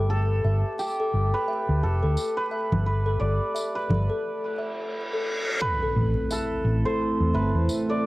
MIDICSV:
0, 0, Header, 1, 9, 480
1, 0, Start_track
1, 0, Key_signature, 0, "minor"
1, 0, Tempo, 689655
1, 70, Time_signature, 4, 2, 24, 8
1, 5611, End_track
2, 0, Start_track
2, 0, Title_t, "Hammered dulcimer"
2, 0, Program_c, 0, 15
2, 0, Note_on_c, 0, 67, 93
2, 0, Note_on_c, 0, 71, 92
2, 67, Note_on_c, 0, 69, 93
2, 547, Note_off_c, 0, 67, 0
2, 550, Note_on_c, 0, 67, 88
2, 675, Note_off_c, 0, 71, 0
2, 929, Note_on_c, 0, 71, 91
2, 1271, Note_off_c, 0, 69, 0
2, 1274, Note_on_c, 0, 69, 81
2, 1646, Note_off_c, 0, 71, 0
2, 1649, Note_on_c, 0, 71, 95
2, 1991, Note_off_c, 0, 71, 0
2, 1993, Note_on_c, 0, 71, 81
2, 2225, Note_on_c, 0, 74, 88
2, 2609, Note_off_c, 0, 71, 0
2, 2612, Note_on_c, 0, 71, 92
2, 2734, Note_off_c, 0, 67, 0
2, 3312, Note_off_c, 0, 69, 0
2, 3906, Note_off_c, 0, 71, 0
2, 3908, Note_on_c, 0, 71, 101
2, 3939, Note_off_c, 0, 74, 0
2, 4400, Note_on_c, 0, 69, 90
2, 4772, Note_on_c, 0, 72, 91
2, 4814, Note_off_c, 0, 71, 0
2, 5113, Note_on_c, 0, 71, 89
2, 5154, Note_off_c, 0, 72, 0
2, 5495, Note_on_c, 0, 74, 88
2, 5611, Note_off_c, 0, 69, 0
2, 5611, Note_off_c, 0, 71, 0
2, 5611, Note_off_c, 0, 74, 0
2, 5611, End_track
3, 0, Start_track
3, 0, Title_t, "Music box"
3, 0, Program_c, 1, 10
3, 0, Note_on_c, 1, 69, 78
3, 70, Note_off_c, 1, 69, 0
3, 309, Note_on_c, 1, 76, 71
3, 677, Note_off_c, 1, 76, 0
3, 694, Note_on_c, 1, 69, 70
3, 1021, Note_off_c, 1, 69, 0
3, 1028, Note_on_c, 1, 76, 81
3, 1397, Note_off_c, 1, 76, 0
3, 1410, Note_on_c, 1, 69, 70
3, 1739, Note_off_c, 1, 69, 0
3, 1750, Note_on_c, 1, 76, 72
3, 2117, Note_off_c, 1, 76, 0
3, 2131, Note_on_c, 1, 69, 77
3, 2460, Note_off_c, 1, 69, 0
3, 2470, Note_on_c, 1, 76, 73
3, 2837, Note_off_c, 1, 76, 0
3, 2852, Note_on_c, 1, 69, 76
3, 3180, Note_off_c, 1, 69, 0
3, 3192, Note_on_c, 1, 76, 75
3, 3558, Note_off_c, 1, 76, 0
3, 3573, Note_on_c, 1, 69, 73
3, 3901, Note_off_c, 1, 69, 0
3, 4055, Note_on_c, 1, 69, 74
3, 4382, Note_off_c, 1, 69, 0
3, 4392, Note_on_c, 1, 76, 78
3, 4758, Note_off_c, 1, 76, 0
3, 4774, Note_on_c, 1, 69, 75
3, 5101, Note_off_c, 1, 69, 0
3, 5111, Note_on_c, 1, 76, 71
3, 5478, Note_off_c, 1, 76, 0
3, 5494, Note_on_c, 1, 69, 72
3, 5611, Note_off_c, 1, 69, 0
3, 5611, End_track
4, 0, Start_track
4, 0, Title_t, "Synth texture"
4, 0, Program_c, 2, 99
4, 0, Note_on_c, 2, 57, 78
4, 0, Note_on_c, 2, 69, 76
4, 2949, Note_off_c, 2, 57, 0
4, 2949, Note_off_c, 2, 69, 0
4, 5611, End_track
5, 0, Start_track
5, 0, Title_t, "Analog synth pad"
5, 0, Program_c, 3, 89
5, 3907, Note_on_c, 3, 60, 91
5, 3911, Note_on_c, 3, 64, 73
5, 3912, Note_on_c, 3, 57, 87
5, 5611, Note_off_c, 3, 57, 0
5, 5611, Note_off_c, 3, 60, 0
5, 5611, Note_off_c, 3, 64, 0
5, 5611, End_track
6, 0, Start_track
6, 0, Title_t, "Fingered electric bass"
6, 0, Program_c, 4, 33
6, 0, Note_on_c, 4, 31, 83
6, 288, Note_off_c, 4, 31, 0
6, 307, Note_on_c, 4, 31, 95
6, 433, Note_off_c, 4, 31, 0
6, 789, Note_on_c, 4, 31, 93
6, 914, Note_off_c, 4, 31, 0
6, 1174, Note_on_c, 4, 38, 85
6, 1259, Note_off_c, 4, 38, 0
6, 1272, Note_on_c, 4, 29, 93
6, 1395, Note_off_c, 4, 29, 0
6, 1415, Note_on_c, 4, 38, 79
6, 1500, Note_off_c, 4, 38, 0
6, 1895, Note_on_c, 4, 31, 85
6, 2213, Note_off_c, 4, 31, 0
6, 2234, Note_on_c, 4, 31, 100
6, 2357, Note_off_c, 4, 31, 0
6, 2711, Note_on_c, 4, 31, 100
6, 2835, Note_off_c, 4, 31, 0
6, 4151, Note_on_c, 4, 33, 98
6, 4275, Note_off_c, 4, 33, 0
6, 4627, Note_on_c, 4, 33, 99
6, 4753, Note_off_c, 4, 33, 0
6, 5014, Note_on_c, 4, 40, 83
6, 5099, Note_off_c, 4, 40, 0
6, 5110, Note_on_c, 4, 31, 97
6, 5235, Note_off_c, 4, 31, 0
6, 5251, Note_on_c, 4, 40, 87
6, 5338, Note_off_c, 4, 40, 0
6, 5611, End_track
7, 0, Start_track
7, 0, Title_t, "Impact"
7, 0, Program_c, 5, 103
7, 3910, Note_on_c, 5, 60, 73
7, 5611, Note_off_c, 5, 60, 0
7, 5611, End_track
8, 0, Start_track
8, 0, Title_t, "Reverse cymbal"
8, 0, Program_c, 6, 119
8, 2950, Note_on_c, 6, 60, 76
8, 3910, Note_off_c, 6, 60, 0
8, 5611, End_track
9, 0, Start_track
9, 0, Title_t, "Drums"
9, 550, Note_on_c, 9, 54, 77
9, 620, Note_off_c, 9, 54, 0
9, 1510, Note_on_c, 9, 54, 76
9, 1580, Note_off_c, 9, 54, 0
9, 1896, Note_on_c, 9, 64, 56
9, 1966, Note_off_c, 9, 64, 0
9, 2477, Note_on_c, 9, 54, 77
9, 2546, Note_off_c, 9, 54, 0
9, 2718, Note_on_c, 9, 64, 58
9, 2788, Note_off_c, 9, 64, 0
9, 4391, Note_on_c, 9, 54, 81
9, 4460, Note_off_c, 9, 54, 0
9, 5351, Note_on_c, 9, 54, 71
9, 5421, Note_off_c, 9, 54, 0
9, 5611, End_track
0, 0, End_of_file